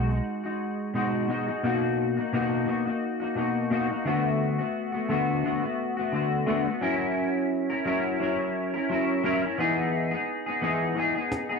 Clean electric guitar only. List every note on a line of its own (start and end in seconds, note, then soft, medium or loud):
0.00 0.10 D#4 medium
0.09 0.46 G#3 soft
0.09 0.44 D#4 soft
0.09 0.43 F#4 soft
0.44 0.94 G#3 soft
0.44 0.94 D#4 soft
0.44 0.94 F#4 medium
0.94 1.27 B2 medium
0.94 1.28 G#3 medium
0.94 1.29 D#4 loud
0.94 1.30 F#4 medium
1.28 1.48 B2 medium
1.28 1.49 G#3 medium
1.28 1.47 D#4 medium
1.28 1.45 F#4 medium
1.47 1.64 G#3 soft
1.47 1.64 D#4 soft
1.47 1.63 F#4 soft
1.63 2.17 B2 medium
1.63 2.18 A#3 medium
1.63 2.18 D#4 medium
1.63 2.16 F#4 medium
2.17 2.32 A#3 soft
2.17 2.33 D#4 soft
2.17 2.33 F#4 medium
2.33 2.65 B2 medium
2.33 2.66 A#3 medium
2.33 2.67 D#4 medium
2.33 2.68 F#4 medium
2.66 2.86 B2 medium
2.66 2.87 A#3 medium
2.66 2.86 D#4 medium
2.66 2.84 F#4 medium
2.85 3.22 A#3 soft
2.85 3.20 D#4 soft
2.85 3.19 F#4 medium
3.20 3.35 A#3 soft
3.20 3.36 D#4 medium
3.20 3.36 F#4 medium
3.35 3.69 B2 medium
3.35 3.70 A#3 medium
3.35 3.71 D#4 medium
3.35 3.71 F#4 medium
3.70 3.90 B2 medium
3.70 3.90 A#3 medium
3.70 3.90 D#4 loud
3.70 3.88 F#4 loud
3.89 4.06 A#3 medium
3.89 4.06 D#4 medium
3.89 4.05 F#4 medium
4.05 4.59 D3 medium
4.05 4.60 A3 loud
4.05 4.59 B3 loud
4.05 4.57 F#4 medium
4.59 4.95 A3 soft
4.59 4.93 B3 medium
4.59 4.91 F#4 medium
4.92 5.08 A3 soft
4.92 5.09 B3 medium
4.92 5.09 F#4 medium
5.09 5.43 D3 medium
5.09 5.44 A3 medium
5.09 5.45 B3 loud
5.09 5.45 F#4 medium
5.44 5.63 D3 medium
5.44 5.64 A3 medium
5.44 5.62 B3 medium
5.44 5.61 F#4 medium
5.62 5.99 A3 soft
5.62 5.98 B3 medium
5.62 5.96 F#4 medium
5.97 6.12 A3 medium
5.97 6.13 B3 medium
5.97 6.13 F#4 medium
6.12 6.45 D3 medium
6.12 6.46 A3 medium
6.12 6.47 B3 medium
6.12 6.48 F#4 medium
6.46 6.66 D3 medium
6.46 6.66 A3 loud
6.46 6.66 B3 medium
6.46 6.64 F#4 medium
6.66 6.81 A3 soft
6.66 6.82 B3 medium
6.66 6.82 F#4 medium
6.81 7.70 F#3 medium
6.81 7.70 C#4 loud
6.81 7.71 E4 loud
6.81 7.69 A#4 medium
7.70 7.85 C#4 soft
7.70 7.86 E4 medium
7.70 7.85 A#4 medium
7.85 8.18 F#3 medium
7.85 8.20 C#4 medium
7.85 8.21 E4 medium
7.85 8.21 A#4 medium
8.20 8.73 F#3 medium
8.20 8.74 C#4 medium
8.20 8.74 E4 medium
8.20 8.72 A#4 medium
8.74 8.89 C#4 soft
8.74 8.90 E4 medium
8.74 8.89 A#4 medium
8.89 9.22 F#3 medium
8.89 9.23 C#4 medium
8.89 9.24 E4 medium
8.89 9.25 A#4 medium
9.23 9.42 F#3 medium
9.23 9.43 C#4 loud
9.23 9.43 E4 loud
9.23 9.41 A#4 loud
9.42 9.59 C#4 medium
9.42 9.59 E4 soft
9.42 9.58 A#4 medium
9.58 10.12 E3 medium
9.58 10.12 B3 medium
9.58 10.12 D#4 medium
9.58 10.10 G#4 medium
10.11 10.48 B3 soft
10.11 10.47 D#4 medium
10.11 10.45 G#4 medium
10.46 10.61 B3 soft
10.46 10.62 D#4 medium
10.46 10.62 G#4 medium
10.61 10.94 E3 medium
10.61 10.96 B3 medium
10.61 10.97 D#4 medium
10.61 10.97 G#4 medium
10.95 11.15 E3 medium
10.95 11.16 B3 medium
10.95 11.15 D#4 medium
10.95 11.14 G#4 medium
11.15 11.51 B3 soft
11.15 11.50 D#4 soft
11.15 11.48 G#4 medium
11.49 11.59 B3 medium
11.49 11.59 D#4 medium
11.49 11.59 G#4 medium